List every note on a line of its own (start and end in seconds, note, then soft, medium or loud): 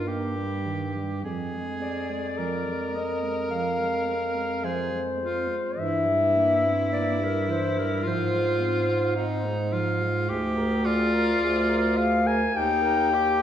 0.00 1.20 G2 soft
0.00 0.65 A#4 medium
0.07 0.38 A#3 soft
0.07 1.23 G4 medium
0.36 0.67 G3 soft
0.66 0.98 D#3 soft
0.96 1.24 G3 soft
1.23 5.47 F2 medium
1.23 1.55 F3 soft
1.23 2.39 G#4 medium
1.54 1.82 G#3 soft
1.81 2.12 C4 soft
1.81 2.96 D5 medium
2.11 2.40 G#3 soft
2.37 2.67 F3 soft
2.37 4.65 A#4 medium
2.66 2.97 G#3 soft
2.95 3.25 C4 soft
2.95 3.50 D#5 medium
3.23 3.50 G#3 soft
3.51 3.81 F3 medium
3.51 4.66 F5 medium
3.80 4.08 G#3 soft
4.06 4.37 C4 soft
4.35 4.65 G#3 soft
4.63 4.93 F3 soft
4.63 5.03 G#4 medium
4.63 5.80 C5 medium
4.92 5.20 G#3 soft
5.19 5.49 C4 soft
5.19 5.57 F4 medium
5.48 5.77 G#3 soft
5.77 8.00 G2 medium
5.77 6.08 E3 medium
5.77 8.05 E4 medium
5.77 6.92 E5 medium
6.06 6.37 G3 medium
6.36 6.66 A#3 soft
6.65 6.93 C4 medium
6.92 7.21 A#3 medium
6.92 7.25 D5 medium
7.19 7.50 G3 soft
7.24 7.52 A#4 medium
7.48 7.79 E3 soft
7.48 7.80 C5 medium
7.77 8.05 G3 medium
7.77 8.09 A#4 medium
8.04 10.26 G#2 medium
8.04 8.33 F3 medium
8.04 9.15 F4 medium
8.04 9.74 C5 medium
8.32 8.62 G#3 medium
8.61 8.91 C4 medium
8.89 9.18 F4 medium
9.15 9.47 C4 medium
9.15 9.74 D#4 medium
9.45 9.74 G#3 medium
9.72 10.03 F3 medium
9.72 10.30 F4 medium
10.02 10.30 G#3 medium
10.29 11.29 D2 medium
10.29 10.87 G4 medium
10.29 10.59 G#4 medium
10.57 10.86 A#4 medium
10.85 12.28 F4 medium
10.85 11.15 G#4 medium
10.85 11.98 D5 medium
11.14 11.41 A#4 medium
11.41 12.42 D2 medium
11.41 11.71 G#4 medium
11.69 12.00 A#4 medium
11.97 12.28 G#4 medium
11.97 12.29 F5 medium
12.27 12.54 A#4 medium
12.27 12.58 G#5 medium
12.54 13.42 D#2 medium
12.54 13.15 D#4 medium
12.54 12.83 G4 medium
12.54 13.42 G5 medium
12.82 13.12 A#4 medium
13.10 13.42 G4 medium